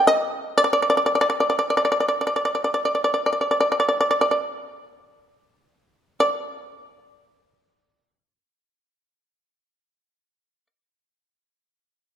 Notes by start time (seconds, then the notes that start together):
0.07 D#5
0.58 D5
0.64 D5
0.73 D5
0.82 D5
0.90 D5
0.97 D5
1.06 D5
1.15 D5
1.21 D5
1.30 D5
1.40 D5
1.50 D5
1.59 D5
1.70 D5
1.77 D5
1.85 D5
1.92 D5
2.00 D5
2.08 D5
2.21 D5
2.27 D5
2.36 D5
2.45 D5
2.55 D5
2.64 D5
2.74 D5
2.85 D5
2.95 D5
3.04 D5
3.14 D5
3.26 D5
3.33 D5
3.41 D5
3.51 D5
3.60 D5
3.72 D5
3.80 D5
3.89 D5
4.01 D5
4.11 D5
4.21 D5
4.31 D5
6.20 D5